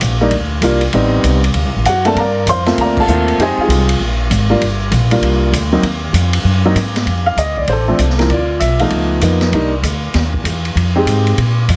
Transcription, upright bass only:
0.01 0.30 A#1 medium
0.31 0.61 D2 medium
0.61 0.92 C2 medium
0.93 1.23 A1 medium
1.24 1.54 C2 loud
1.54 1.65 D2 medium
1.65 1.75 C2 medium
1.76 1.84 A1 medium
1.85 2.15 F#2 medium
2.15 2.46 G2 medium
2.46 2.76 F2 medium
2.77 3.07 D2 medium
3.08 3.38 D#2 medium
3.38 3.57 F2 medium
3.57 muted upright bass stroke soft
3.68 3.99 C2 medium
4.00 4.30 A#1 medium
4.30 4.60 G#1 medium
4.61 4.91 G1 medium
4.91 5.21 A#1 loud
5.21 5.52 C2 medium
5.52 5.82 D2 medium
5.82 6.12 D#2 medium
6.13 6.43 F2 medium
6.44 6.74 F#2 medium
6.75 7.05 G#2 medium
7.06 7.36 F2 medium
7.36 7.67 D2 medium
7.67 7.98 A1 medium
7.99 8.29 C2 medium
8.29 8.60 D2 medium
8.60 8.90 B1 medium
8.90 9.21 C#2 medium
9.21 9.51 F2 medium
9.52 9.82 C2 medium
9.82 10.13 D2 medium
10.14 10.43 D#2 medium
10.44 10.75 E2 medium
10.75 11.05 F2 medium
11.05 11.36 G#2 medium
11.37 11.67 A#2 medium
11.68 11.76 F2 medium

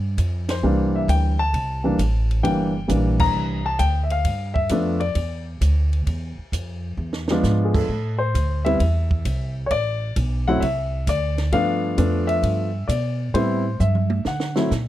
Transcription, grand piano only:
0.50 0.96 C5 medium
0.63 1.33 E3 medium
0.63 1.33 G3 medium
0.63 1.33 A#3 medium
0.63 1.33 D4 medium
0.96 1.08 E5 medium
1.09 1.40 G5 medium
1.39 2.40 A5 loud
1.84 1.97 E3 medium
1.84 1.97 G3 medium
1.84 1.98 A#3 medium
1.84 1.98 D4 medium
2.43 2.71 E3 medium
2.43 2.72 G3 medium
2.43 2.72 A#3 medium
2.43 2.72 D4 medium
2.43 3.16 G5 medium
2.88 3.59 E3 medium
2.88 3.59 G3 medium
2.88 3.59 A#3 medium
2.88 3.59 D4 medium
3.20 3.67 A#5 loud
3.66 3.79 A5 loud
3.79 3.99 G5 loud
4.03 4.12 E5 medium
4.11 4.54 F5 medium
4.54 4.97 E5 medium
4.71 4.99 F3 medium
4.71 4.99 A3 medium
4.71 4.99 B3 medium
4.71 4.99 D4 medium
5.00 5.43 D5 medium
7.30 7.87 F3 medium
7.30 7.87 G#3 medium
7.30 7.87 B3 medium
7.30 7.87 D4 medium
7.65 7.74 G#4 medium
7.74 8.17 A4 medium
8.19 8.61 C5 medium
8.65 8.79 G3 medium
8.65 8.79 B3 medium
8.65 8.79 C4 medium
8.65 8.79 E4 medium
8.65 9.52 E5 loud
9.66 9.71 C#5 medium
9.71 10.13 D5 loud
10.48 10.61 F#3 medium
10.48 10.61 A3 medium
10.48 10.61 C4 medium
10.48 10.61 E4 medium
10.48 10.62 F#5 loud
10.60 11.03 E5 loud
11.09 11.50 D5 loud
11.52 11.96 F3 medium
11.52 11.96 A3 medium
11.52 11.97 B3 medium
11.52 11.97 D4 medium
11.52 12.25 F5 loud
11.98 12.68 F3 medium
11.98 12.68 A3 medium
11.98 12.68 B3 medium
11.98 12.68 D4 medium
12.27 12.90 E5 loud
12.88 13.35 D5 medium
13.34 13.63 G3 medium
13.34 13.63 B3 medium
13.34 13.63 C4 medium
13.34 13.63 E4 medium
13.34 13.81 C5 medium
13.80 14.22 E5 medium
14.27 14.69 F#5 medium
14.56 14.69 F#3 medium
14.56 14.69 A3 medium
14.56 14.70 C4 medium
14.56 14.70 E4 medium

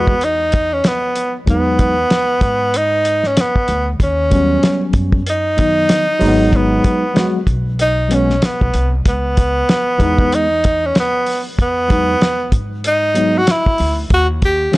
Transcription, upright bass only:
0.00 0.80 E2 medium
1.48 2.03 E2 loud
2.41 3.33 G#2 medium
3.69 3.96 D2 medium
4.00 4.56 D#2 medium
4.94 5.85 F#2 medium
6.21 6.77 G#1 loud
7.47 8.38 B1 medium
8.61 8.73 B1 medium
8.75 9.02 C2 medium
9.06 9.61 C#2 medium
10.00 10.91 E2 medium
11.59 12.14 E2 loud
12.52 13.43 G#2 medium
13.80 14.07 D2 medium
14.11 14.66 D#2 loud

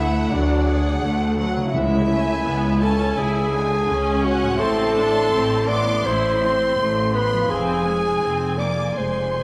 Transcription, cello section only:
0.00 0.24 D2 medium
0.31 0.94 D2 medium
1.03 1.66 D2 medium
1.75 2.38 C#2 medium
2.47 3.09 C#2 medium
3.18 3.80 C#2 medium
3.89 4.52 C#2 medium
4.60 5.24 A2 medium
5.33 5.97 A2 medium
6.07 6.70 A2 medium
6.79 7.42 A2 medium
7.51 8.14 F2 medium
8.23 8.88 F2 medium
8.97 9.43 F2 medium

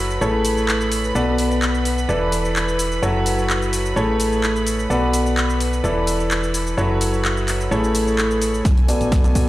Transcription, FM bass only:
0.00 0.19 F#1 medium
0.21 1.13 A1 medium
1.15 2.07 B1 medium
2.09 3.00 E1 medium
3.03 3.94 F#1 medium
3.96 4.88 A1 medium
4.90 5.82 B1 medium
5.84 6.75 E1 medium
6.78 7.69 F#1 medium
7.71 8.63 A1 medium
8.65 8.93 B1 medium
9.01 9.28 A1 medium
9.35 9.43 B1 loud

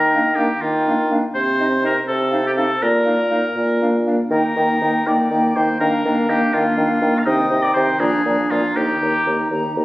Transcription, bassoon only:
0.00 0.50 D#3 soft
0.62 1.23 D#3 soft
1.35 1.96 C3 medium
2.09 2.70 C3 medium
2.82 3.45 A#2 soft
3.56 4.19 A#2 soft
4.31 4.42 D#3 soft
4.56 4.68 D#3 soft
4.81 4.93 D#3 soft
5.06 5.18 D#3 soft
5.31 5.42 D#3 soft
5.56 5.67 D#3 soft
5.81 5.92 D#3 medium
6.05 6.16 D#3 soft
6.29 6.40 D#3 soft
6.54 6.65 D#3 medium
6.77 6.88 D#3 medium
7.02 7.13 D#3 medium
7.26 7.37 C3 medium
7.50 7.62 C3 medium
7.76 7.87 C3 medium
8.00 8.11 A#2 medium
8.25 8.36 A#2 medium
8.51 8.62 A#2 medium
8.76 8.87 D#2 medium
9.02 9.13 D#2 soft
9.26 9.38 D#2 soft
9.51 9.62 D#2 soft
9.76 9.85 D#2 soft

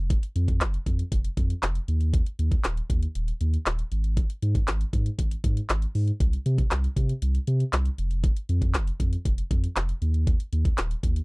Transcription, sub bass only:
0.00 0.18 F1 loud
0.36 0.63 F2 loud
0.61 0.78 F1 loud
0.86 1.03 F2 medium
1.12 1.28 F1 loud
1.37 1.54 F2 medium
1.63 1.79 F1 loud
1.88 2.21 D#2 medium
2.39 2.55 D#2 loud
2.64 2.81 D#1 loud
2.90 3.06 D#2 loud
3.15 3.32 D#1 loud
3.41 3.57 D#2 medium
3.66 3.83 D#1 loud
3.92 4.25 G#1 loud
4.42 4.59 G#2 loud
4.68 4.84 G#1 loud
4.93 5.10 G#2 loud
5.19 5.35 G#1 loud
5.44 5.61 G#2 medium
5.70 5.86 G#1 loud
5.95 6.11 G#2 loud
6.20 6.37 C2 loud
6.46 6.62 C3 loud
6.71 6.88 C2 loud
6.96 7.13 C3 loud
7.22 7.39 C2 loud
7.48 7.64 C3 loud
7.73 7.89 C2 loud
7.98 8.31 F1 loud
8.49 8.76 F2 loud
8.75 8.91 F1 loud
9.00 9.16 F2 loud
9.25 9.42 F1 loud
9.51 9.67 F2 medium
9.76 9.93 F1 loud
10.02 10.35 D#2 medium
10.53 10.69 D#2 loud
10.78 10.95 D#1 loud
11.03 11.20 D#2 loud

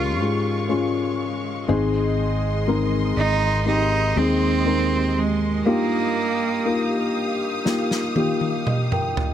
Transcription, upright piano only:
0.00 0.20 G#3 medium
0.00 0.20 C#4 medium
0.00 0.21 F4 medium
0.00 1.71 G4 medium
0.00 0.19 A#4 medium
0.20 0.67 G#3 medium
0.20 0.67 C#4 soft
0.20 0.68 F4 soft
0.20 0.68 G#4 medium
0.69 1.63 G#3 medium
0.69 1.64 C#4 medium
0.69 1.64 F4 medium
0.69 1.64 G#4 medium
1.68 3.13 G#2 medium
1.68 2.62 G#3 medium
1.68 2.62 C4 medium
1.68 2.63 D#4 medium
1.68 2.63 G#4 loud
2.67 3.61 G#3 medium
2.67 3.62 C4 medium
2.67 3.62 D#4 medium
2.67 3.62 A#4 medium
3.65 4.13 G#3 medium
3.65 4.13 C4 medium
3.65 4.14 D#4 medium
3.65 4.14 G4 medium
4.16 4.63 G#3 medium
4.16 4.63 C4 medium
4.16 4.64 D#4 medium
4.16 4.64 G#4 medium
4.65 5.60 G#3 medium
4.65 5.60 C4 medium
4.65 5.61 D#4 medium
4.65 5.61 A#4 medium
5.65 7.11 G2 medium
5.65 6.60 A#3 medium
5.65 6.60 D#4 medium
5.65 6.61 F4 medium
5.65 6.61 G4 medium
6.65 7.60 A#3 medium
6.65 7.60 D#4 medium
6.65 7.61 F4 medium
6.65 7.61 A#4 medium
7.65 8.13 A#3 medium
7.65 8.13 D#4 medium
7.65 8.14 F4 medium
7.65 8.14 G4 medium
8.15 8.64 A#3 medium
8.15 8.64 D#4 medium
8.15 8.64 F4 medium
8.15 8.65 G4 medium
8.67 8.91 G4 soft
8.67 8.91 D#5 soft
8.92 9.34 A#4 soft
8.92 9.34 G5 medium

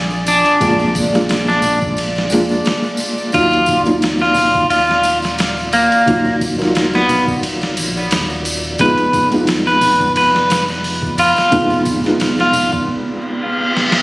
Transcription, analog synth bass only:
0.00 0.42 A#1 loud
0.61 2.28 A#1 medium
2.31 2.62 F1 medium
3.34 5.87 D#1 medium
6.07 7.78 D#1 medium
7.77 8.07 A#1 medium
8.11 8.76 D#1 medium
8.80 11.33 F1 loud
11.52 12.88 F1 medium

